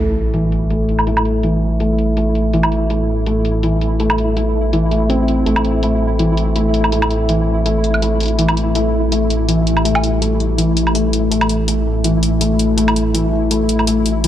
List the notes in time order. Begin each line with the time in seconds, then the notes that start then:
Already playing: A1 A3 E4 E5, sub drop
0.34 E3, closed hi-hat
0.52 closed hi-hat
0.70 A3, closed hi-hat
0.89 closed hi-hat
0.99 low woodblock
1.07 A3, closed hi-hat
1.17 low woodblock
1.25 closed hi-hat
1.43 E3, closed hi-hat
1.80 A3, closed hi-hat
1.98 closed hi-hat
2.17 A3, closed hi-hat
2.35 closed hi-hat
2.53 E3, closed hi-hat
2.63 low woodblock
2.72 closed hi-hat
2.90 A3, closed hi-hat
3.26 A3, closed hi-hat
3.45 closed hi-hat
3.63 E3, closed hi-hat
3.81 closed hi-hat
4.00 A3, closed hi-hat
4.10 low woodblock
4.18 closed hi-hat
4.37 A3, closed hi-hat
4.73 E3, closed hi-hat
4.91 A3, closed hi-hat
5.09 C4, closed hi-hat
5.28 closed hi-hat
5.46 A1 A3 E5, closed hi-hat
5.56 low woodblock
5.65 closed hi-hat
5.83 A3, closed hi-hat
6.19 E3, closed hi-hat
6.37 closed hi-hat
6.56 A3, closed hi-hat
6.74 closed hi-hat
6.84 low woodblock
6.92 A3, closed hi-hat
7.02 low woodblock
7.10 closed hi-hat
7.29 E3, closed hi-hat
7.66 A3, closed hi-hat
7.84 closed hi-hat
7.94 low woodblock
8.02 A3, closed hi-hat
8.20 closed hi-hat
8.23 closed hi-hat
8.26 closed hi-hat
8.28 closed hi-hat
8.39 E3 G4, closed hi-hat
8.48 low woodblock
8.57 closed hi-hat
8.75 A3, closed hi-hat
9.12 A3, closed hi-hat
9.30 closed hi-hat
9.48 E3, closed hi-hat
9.67 closed hi-hat
9.77 low woodblock
9.85 A3, closed hi-hat
9.95 low woodblock
10.04 closed hi-hat
10.21 A3, closed hi-hat
10.40 closed hi-hat
10.58 E3, closed hi-hat
10.77 closed hi-hat
10.87 low woodblock
10.95 A3, closed hi-hat
11.13 closed hi-hat
11.31 A1 A3 E4 E5, closed hi-hat
11.41 low woodblock
11.49 closed hi-hat
11.68 A3, closed hi-hat
12.04 E3, closed hi-hat
12.23 closed hi-hat
12.41 A3, closed hi-hat
12.59 closed hi-hat
12.77 A3, closed hi-hat
12.88 low woodblock
12.96 closed hi-hat
13.14 E3, closed hi-hat
13.51 A3, closed hi-hat
13.69 closed hi-hat
13.79 low woodblock
13.87 A3, closed hi-hat
14.06 closed hi-hat
14.24 E3, closed hi-hat